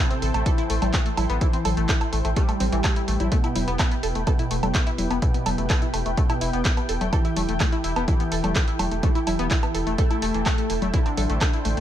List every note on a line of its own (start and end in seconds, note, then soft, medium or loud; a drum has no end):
0.00 0.37 C3 loud
0.00 0.37 C3 medium
0.00 0.37 C4 loud
0.00 3.28 E4 medium
0.00 3.28 A4 medium
0.00 3.28 C5 medium
0.00 3.28 G5 medium
0.11 0.14 C4 medium
0.11 closed hi-hat soft
0.22 0.31 A1 loud
0.22 0.25 A4 medium
0.22 open hi-hat medium
0.34 0.42 A1 medium
0.34 0.42 A3 medium
0.34 closed hi-hat soft
0.34 low woodblock medium
0.46 1.32 E3 medium
0.46 1.32 E4 loud
0.46 0.49 A4 loud
0.46 kick loud
0.46 closed hi-hat medium
0.58 0.63 E4 medium
0.58 closed hi-hat soft
0.70 0.78 A1 medium
0.70 0.75 A3 medium
0.70 open hi-hat loud
0.82 0.90 A1 medium
0.82 0.87 A3 medium
0.82 closed hi-hat soft
0.82 low conga medium
0.82 low woodblock soft
0.94 0.99 A3 loud
0.94 kick loud
0.94 clap loud
0.94 closed hi-hat medium
1.06 1.09 A3 medium
1.06 closed hi-hat soft
1.17 1.26 A1 loud
1.17 1.25 E4 medium
1.17 open hi-hat medium
1.17 low conga medium
1.17 low woodblock medium
1.30 1.38 A1 medium
1.30 1.37 B3 loud
1.30 closed hi-hat soft
1.41 2.27 E3 medium
1.41 1.47 E4 medium
1.41 2.27 E4 loud
1.41 kick loud
1.41 closed hi-hat medium
1.53 1.56 C4 medium
1.53 closed hi-hat soft
1.65 1.73 A1 medium
1.65 1.68 A4 medium
1.65 open hi-hat loud
1.65 low conga medium
1.65 low woodblock medium
1.77 1.85 A1 medium
1.77 1.85 A3 medium
1.77 closed hi-hat soft
1.89 1.92 A4 loud
1.89 kick loud
1.89 clap loud
1.89 closed hi-hat medium
2.01 2.06 E4 medium
2.01 closed hi-hat soft
2.01 low woodblock medium
2.13 2.21 A1 loud
2.13 2.18 A3 medium
2.13 open hi-hat medium
2.25 2.33 A1 medium
2.25 2.30 A3 medium
2.25 closed hi-hat soft
2.36 3.22 G3 medium
2.36 3.22 G3 loud
2.36 2.42 A3 loud
2.36 3.22 G4 loud
2.36 kick loud
2.36 closed hi-hat medium
2.49 2.52 A3 medium
2.49 closed hi-hat soft
2.49 low woodblock medium
2.60 2.69 A1 loud
2.60 2.66 C4 medium
2.60 open hi-hat loud
2.60 low conga medium
2.72 2.81 A1 medium
2.72 2.80 E3 loud
2.72 closed hi-hat soft
2.84 2.92 A3 medium
2.84 kick loud
2.84 clap loud
2.84 closed hi-hat medium
2.84 low woodblock medium
2.96 3.01 E4 medium
2.96 closed hi-hat soft
3.08 3.16 A1 loud
3.08 3.16 A3 medium
3.08 open hi-hat medium
3.20 3.28 A1 medium
3.20 3.28 E4 medium
3.20 closed hi-hat soft
3.20 low conga medium
3.32 4.18 B2 medium
3.32 3.37 A3 loud
3.32 4.18 B3 loud
3.32 11.80 E4 medium
3.32 10.90 G4 medium
3.32 7.09 B4 medium
3.32 10.90 G5 medium
3.32 kick loud
3.32 closed hi-hat medium
3.44 3.47 E4 loud
3.44 closed hi-hat soft
3.44 low woodblock medium
3.56 3.64 E1 medium
3.56 3.64 E4 medium
3.56 open hi-hat loud
3.56 low conga medium
3.68 3.76 E1 medium
3.68 3.75 B3 loud
3.68 closed hi-hat soft
3.79 3.85 E4 medium
3.79 kick loud
3.79 clap loud
3.79 closed hi-hat medium
3.79 low woodblock medium
3.92 3.95 B3 medium
3.92 closed hi-hat soft
4.03 4.12 E1 loud
4.03 4.06 A4 medium
4.03 open hi-hat medium
4.15 4.23 E1 medium
4.15 4.23 A3 medium
4.15 closed hi-hat soft
4.27 5.13 B2 medium
4.27 5.13 B2 loud
4.27 5.13 B3 loud
4.27 4.30 A4 loud
4.27 kick loud
4.27 closed hi-hat medium
4.27 low woodblock medium
4.39 4.44 E4 medium
4.39 closed hi-hat soft
4.51 4.59 E1 loud
4.51 4.56 A3 medium
4.51 open hi-hat loud
4.63 4.71 E1 medium
4.63 4.68 A3 medium
4.63 closed hi-hat soft
4.63 low conga medium
4.63 low woodblock medium
4.75 4.80 A3 loud
4.75 kick loud
4.75 clap loud
4.75 closed hi-hat medium
4.87 4.90 E4 loud
4.87 closed hi-hat soft
4.98 5.07 E1 loud
4.98 5.06 E4 medium
4.98 open hi-hat loud
4.98 low conga medium
5.11 5.19 E1 medium
5.11 5.18 B3 loud
5.11 closed hi-hat soft
5.11 low woodblock medium
5.22 6.08 B2 medium
5.22 6.08 B2 loud
5.22 6.08 B3 loud
5.22 5.27 E4 medium
5.22 kick loud
5.22 closed hi-hat medium
5.34 5.37 B3 medium
5.34 closed hi-hat soft
5.46 5.54 E1 loud
5.46 5.49 A4 medium
5.46 open hi-hat loud
5.46 low conga medium
5.46 low woodblock medium
5.58 5.66 E1 medium
5.58 5.66 A3 medium
5.58 closed hi-hat soft
5.70 5.73 A4 loud
5.70 kick loud
5.70 clap loud
5.70 closed hi-hat medium
5.82 5.87 E4 medium
5.82 closed hi-hat soft
5.94 6.02 E1 loud
5.94 5.99 A3 medium
5.94 open hi-hat loud
5.94 low woodblock medium
6.06 6.14 E1 medium
6.06 6.11 A3 medium
6.06 closed hi-hat soft
6.17 7.03 B2 medium
6.17 6.23 A3 loud
6.17 7.03 B3 loud
6.17 kick loud
6.17 closed hi-hat medium
6.30 6.33 E4 loud
6.30 closed hi-hat soft
6.30 low woodblock medium
6.41 6.50 E1 medium
6.41 6.49 E4 medium
6.41 open hi-hat loud
6.53 6.62 E1 medium
6.53 6.61 B3 loud
6.53 closed hi-hat soft
6.65 6.70 E4 medium
6.65 kick loud
6.65 clap loud
6.65 closed hi-hat medium
6.77 6.80 B3 medium
6.77 closed hi-hat soft
6.77 low woodblock medium
6.89 6.97 E1 loud
6.89 6.92 A4 medium
6.89 open hi-hat loud
7.01 7.09 E1 medium
7.01 7.09 A3 medium
7.01 closed hi-hat soft
7.01 low conga medium
7.13 7.99 E3 medium
7.13 7.99 E3 loud
7.13 7.99 E4 loud
7.13 11.80 A4 medium
7.13 7.16 A4 loud
7.13 kick loud
7.13 closed hi-hat medium
7.13 low woodblock medium
7.25 7.30 E4 medium
7.25 closed hi-hat soft
7.36 7.45 E1 loud
7.36 7.42 A3 medium
7.36 open hi-hat loud
7.36 low conga medium
7.49 7.57 E1 medium
7.49 7.54 A3 medium
7.49 closed hi-hat soft
7.60 7.66 A3 loud
7.60 kick loud
7.60 clap loud
7.60 closed hi-hat medium
7.60 low woodblock medium
7.72 7.75 E4 loud
7.72 closed hi-hat soft
7.84 7.93 E1 loud
7.84 7.92 E4 medium
7.84 open hi-hat loud
7.96 8.04 E1 medium
7.96 8.04 B3 loud
7.96 closed hi-hat soft
7.96 low woodblock medium
8.08 8.94 E3 medium
8.08 8.94 E3 loud
8.08 8.13 E4 medium
8.08 8.94 E4 loud
8.08 kick loud
8.08 closed hi-hat medium
8.20 8.23 B3 medium
8.20 closed hi-hat soft
8.32 8.40 E1 loud
8.32 8.35 A4 medium
8.32 open hi-hat loud
8.44 8.52 E1 medium
8.44 8.52 A3 medium
8.44 closed hi-hat soft
8.44 low conga medium
8.44 low woodblock medium
8.55 8.59 A4 loud
8.55 kick loud
8.55 clap loud
8.55 closed hi-hat medium
8.68 8.73 E4 medium
8.68 closed hi-hat soft
8.79 8.88 E1 loud
8.79 8.85 A3 medium
8.79 open hi-hat loud
8.79 low conga medium
8.79 low woodblock medium
8.91 9.00 E1 medium
8.91 8.97 A3 medium
8.91 closed hi-hat soft
9.03 9.89 E3 medium
9.03 9.08 A3 loud
9.03 9.89 E4 loud
9.03 kick loud
9.03 closed hi-hat medium
9.15 9.18 E4 loud
9.15 closed hi-hat soft
9.27 9.35 E1 loud
9.27 9.35 E4 medium
9.27 open hi-hat loud
9.27 low conga medium
9.27 low woodblock medium
9.39 9.47 E1 medium
9.39 9.47 B3 loud
9.39 closed hi-hat soft
9.51 9.56 E4 medium
9.51 kick loud
9.51 clap loud
9.51 closed hi-hat medium
9.63 9.66 B3 medium
9.63 closed hi-hat soft
9.63 low woodblock medium
9.75 9.83 E1 loud
9.75 9.78 A4 medium
9.75 open hi-hat medium
9.87 9.95 E1 medium
9.87 9.94 A3 medium
9.87 closed hi-hat soft
9.98 10.84 A3 medium
9.98 10.84 A4 loud
9.98 10.02 A4 loud
9.98 kick loud
9.98 closed hi-hat medium
10.11 10.16 E4 medium
10.11 closed hi-hat soft
10.11 low woodblock medium
10.22 10.31 E1 loud
10.22 10.25 A3 loud
10.22 open hi-hat loud
10.34 10.42 E1 medium
10.34 10.42 E3 medium
10.34 closed hi-hat soft
10.46 10.49 A3 loud
10.46 kick loud
10.46 clap loud
10.46 closed hi-hat medium
10.46 low woodblock medium
10.58 10.66 A3 medium
10.58 closed hi-hat soft
10.70 10.78 E1 medium
10.70 10.73 E3 medium
10.70 open hi-hat loud
10.82 10.90 E1 medium
10.82 10.87 A3 medium
10.82 closed hi-hat soft
10.82 low conga medium
10.93 11.80 D3 loud
10.93 11.80 D3 medium
10.93 11.80 D4 loud
10.93 10.99 E4 medium
10.93 11.80 C5 medium
10.93 11.80 G5 medium
10.93 kick loud
10.93 closed hi-hat medium
11.06 11.09 C4 medium
11.06 closed hi-hat soft
11.06 low woodblock medium
11.17 11.26 A1 medium
11.17 11.21 A4 medium
11.17 open hi-hat loud
11.17 low conga medium
11.30 11.38 A1 medium
11.30 11.37 A3 medium
11.30 closed hi-hat soft
11.41 11.44 A4 loud
11.41 kick loud
11.41 clap loud
11.41 closed hi-hat medium
11.41 low woodblock medium
11.53 11.59 E4 medium
11.53 closed hi-hat soft
11.65 11.74 A1 loud
11.65 11.68 A3 medium
11.65 open hi-hat medium